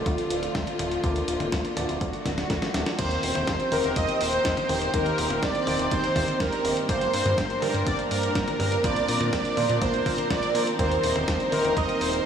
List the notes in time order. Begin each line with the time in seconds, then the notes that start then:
Already playing: D3 F3 A3 D4 F4 D5
0.06 D2, kick, closed hi-hat
0.18 closed hi-hat
0.30 D1, closed hi-hat
0.43 closed hi-hat
0.55 D2, kick, snare, closed hi-hat
0.67 closed hi-hat
0.79 D1 A3 D4 F4 D5, closed hi-hat, high tom
0.91 closed hi-hat
1.04 D2 D3 A#3 D4 F4 D5, kick, closed hi-hat
1.16 closed hi-hat
1.28 D1, closed hi-hat
1.40 D1, closed hi-hat, high tom
1.52 D2, kick, snare, closed hi-hat
1.65 closed hi-hat
1.77 D1 D3 A3 D4 F#4 D5, closed hi-hat, high tom
1.89 D1, closed hi-hat
2.01 D2 F#3 A3 F#4, kick, closed hi-hat
2.13 closed hi-hat
2.26 D1, kick, snare, closed hi-hat, high tom
2.38 snare, closed hi-hat
2.50 D2, kick, snare, closed hi-hat
2.62 snare, closed hi-hat
2.74 D1 A3 D4 F#4 D5, snare, closed hi-hat
2.86 snare, closed hi-hat
2.99 D#2 D#3 A#3 C4 D#4 G4 C5, kick, closed hi-hat, crash
3.11 closed hi-hat
3.23 D#1, open hi-hat
3.35 D#1, closed hi-hat, high tom
3.47 D#2, kick, snare, closed hi-hat
3.60 closed hi-hat
3.72 D#1 D#3 A#3 D#4 G4 A#4 C5, open hi-hat, high tom
3.84 D#1, closed hi-hat
3.96 D#2 D#5, kick, closed hi-hat
4.08 closed hi-hat
4.21 D#1 C5, open hi-hat
4.33 closed hi-hat
4.45 D#2, kick, snare, closed hi-hat
4.57 closed hi-hat, high tom
4.69 D#1 D#3 A#3 D#4 G4 C5, open hi-hat, high tom
4.82 closed hi-hat
4.94 D#2 D#3 A#3 C4 D#4 G4 A#4 C5, kick, closed hi-hat
5.06 closed hi-hat
5.18 D#1, open hi-hat
5.30 D#1, closed hi-hat, high tom
5.43 D#2 D5, kick, snare, closed hi-hat
5.55 closed hi-hat
5.67 D#1 D#3 A#3 D#4 G4 C5, open hi-hat, high tom
5.79 D#1, closed hi-hat
5.91 D#2 C5, kick, closed hi-hat
6.04 closed hi-hat
6.16 D#1, kick, open hi-hat, high tom
6.28 closed hi-hat
6.40 D#2 A#4, kick, snare, closed hi-hat
6.53 closed hi-hat
6.65 D#1 G2 A#3 D#4 G4 C5, open hi-hat
6.77 closed hi-hat
6.89 G1 G2 G3 A#3 D4 G4 A#4 C5 D5, kick, closed hi-hat
7.01 closed hi-hat
7.13 G2, open hi-hat
7.26 G2, closed hi-hat, high tom
7.38 G1, kick, snare, closed hi-hat
7.50 closed hi-hat
7.62 G2 A#3 D4 G4 A#4 D5, open hi-hat, high tom
7.74 G2, closed hi-hat
7.87 G1 D5, kick, closed hi-hat
7.99 closed hi-hat
8.11 G2 A#4, open hi-hat
8.23 closed hi-hat
8.35 G1, kick, snare, closed hi-hat
8.48 closed hi-hat, high tom
8.60 G2 A#2 A#3 D4 G4 A#4 D5, open hi-hat, high tom
8.72 closed hi-hat
8.84 A#1 A#2 F3 A#3 C4 D4 F4 C5 D5, kick, closed hi-hat
8.96 closed hi-hat
9.08 A#2, open hi-hat
9.21 A#2, closed hi-hat, high tom
9.33 A#1 D5, kick, snare, closed hi-hat
9.45 closed hi-hat
9.57 A#2 A#3 D4 F4 C5, open hi-hat, high tom
9.69 A#2, closed hi-hat
9.82 A#1 C5, kick, closed hi-hat
9.94 closed hi-hat
10.06 A#2, kick, open hi-hat, high tom
10.18 closed hi-hat
10.30 A#1 D5, kick, snare, closed hi-hat
10.43 closed hi-hat
10.55 A#2 D#3 A#3 D4 F4 C5, open hi-hat
10.67 closed hi-hat
10.79 D#2 D#3 G3 A#3 D#4 G4 C5, kick, closed hi-hat
10.91 closed hi-hat
11.04 D#1, open hi-hat
11.16 D#1, closed hi-hat, high tom
11.28 D#2, kick, snare, closed hi-hat
11.40 closed hi-hat
11.52 D#1 D#3 A#3 D#4 G4 A#4 C5, open hi-hat, high tom
11.65 D#1, closed hi-hat
11.77 D#2 D#5, kick, closed hi-hat
11.89 closed hi-hat
12.01 D#1 C5, open hi-hat
12.13 closed hi-hat